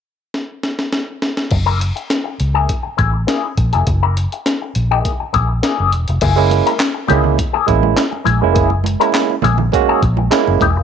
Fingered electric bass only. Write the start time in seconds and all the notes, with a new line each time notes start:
1.52 F#1
2.40 C#2
2.99 A1
3.58 A#1
3.75 F1
3.87 F#1
4.76 A#1
5.34 A#1
5.80 F#1
5.94 E1
6.09 F1
6.22 F#1
7.10 C#2
7.68 A1
8.26 A#1
8.43 F1
8.57 F#1
9.44 A#1
10.03 A#1
10.48 F#1
10.61 E1
10.76 F1